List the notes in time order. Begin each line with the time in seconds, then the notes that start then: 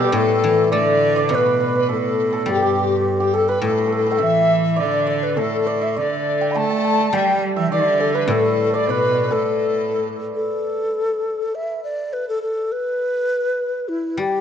Already playing: B2 G3 B3 A4 B4 D5 E5
0.00 G4
0.12 A2 A4
0.44 E3
0.72 D3 A3 D5
0.77 D5
1.16 D5
1.29 B2 B4
1.35 B4
1.46 B4
1.53 B4
1.60 B4
1.68 B4
1.75 B4
1.89 A2 A4
2.33 A4
2.46 G2 G3 G4
2.50 G4
2.57 A4
2.62 G2 G4
3.20 G4
3.33 A4
3.48 B4
3.61 A2 A4
3.69 A4
3.78 A4
3.86 A4
3.91 A4
3.99 A4
4.06 A4
4.11 G5
4.18 E3 E5
4.22 E5
4.76 D3 D5
4.99 E5
5.07 D5
5.23 B4
5.37 A2 A4
5.66 D5
5.81 E5
5.96 D3 D5
6.41 G5
6.51 B5
6.55 A3 A5
6.63 A5
6.70 A5
6.78 A5
6.84 A5
6.93 A5
7.00 A5
7.13 G3 G5
7.56 E3 E5
7.71 D3 D5
8.00 A4
8.15 B4
8.28 A2 A4
8.38 B4
8.43 A4
8.73 D5
8.86 B2 B4
9.24 B4
9.31 A2 A4
10.35 A4
11.55 E5
11.84 D5
12.13 B4
12.29 A4
12.42 A4
12.72 B4
13.88 E4
14.17 G3 G4